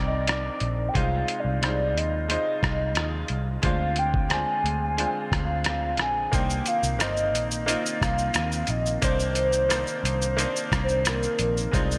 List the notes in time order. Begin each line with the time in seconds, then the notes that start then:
Already playing: C2 C4 D#4 A#4 D5
0.06 D#5
0.27 C4 D#4 A#4 D5, cross-stick, closed hi-hat
0.60 A#1 D5, closed hi-hat
0.89 G5
0.94 C2 C3 G#3 D#4 F4 C5 F5, kick, closed hi-hat
1.28 closed hi-hat
1.40 D5
1.45 C2
1.61 C2 C3 G3 G#3 D#4 F4 C5, cross-stick, closed hi-hat
1.68 G#3
1.96 D#2 D#5, closed hi-hat
2.28 C3 G#3 D#4 F4 C5 D#5, closed hi-hat
2.63 C2, kick, cross-stick, closed hi-hat
2.95 D#2 C3 G#3 D#4 F4, cross-stick, closed hi-hat
3.28 C2, closed hi-hat
3.62 D2 D3 G#3 C4 D4 F4 C5, kick, closed hi-hat
3.66 F4 F5
3.96 G5, closed hi-hat
4.14 kick
4.29 G#3 D4 F4 C5 G#5, cross-stick, closed hi-hat
4.64 D2, closed hi-hat
4.97 D3 G#3 C4 D4 F4 C5, closed hi-hat
5.32 D2, kick, cross-stick, closed hi-hat
5.44 F5
5.64 D3 G#3 C4 F4 F5, cross-stick, closed hi-hat
5.97 A#1 G#5, cross-stick, closed hi-hat
6.32 C2 C3 D#3 A#3 D4 D#4 C5 G5, kick, closed hi-hat, shaker
6.50 shaker
6.66 F5, closed hi-hat, shaker
6.83 C2, shaker
6.99 G1 A#3 C4 D#4 C5 D#5, cross-stick, closed hi-hat, shaker
7.17 shaker
7.34 A#1, closed hi-hat, shaker
7.51 shaker
7.66 C3 D#3 A#3 C4 D#4 F4 D#5, closed hi-hat, shaker
7.86 shaker
8.02 C2 F5, kick, cross-stick, closed hi-hat, shaker
8.18 shaker
8.34 D#2 C3 D#3 A#3, cross-stick, closed hi-hat, shaker
8.52 shaker
8.67 A#1 D#5, closed hi-hat, shaker
8.86 shaker
9.02 C2 C3 D#3 A#3 D4 D#4 C5, kick, closed hi-hat, shaker
9.20 shaker
9.35 closed hi-hat, shaker
9.53 shaker
9.69 C3 D#3 A#3 D4 D#4 C5, cross-stick, closed hi-hat, shaker
9.87 shaker
10.04 C2, closed hi-hat, shaker
10.22 shaker
10.37 C3 D#3 A#3 D4 D#4 C5, closed hi-hat, shaker
10.56 shaker
10.72 C2, kick, cross-stick, closed hi-hat, shaker
10.84 C5
10.89 shaker
11.05 C3 D#3 A#3 D4 A#4, cross-stick, closed hi-hat, shaker
11.23 shaker
11.39 A#1 A#4, closed hi-hat, shaker
11.57 shaker
11.71 C2 C3 F3 G#3 D#4 F4 C5 D5, kick, closed hi-hat, shaker
11.76 D#4
11.91 shaker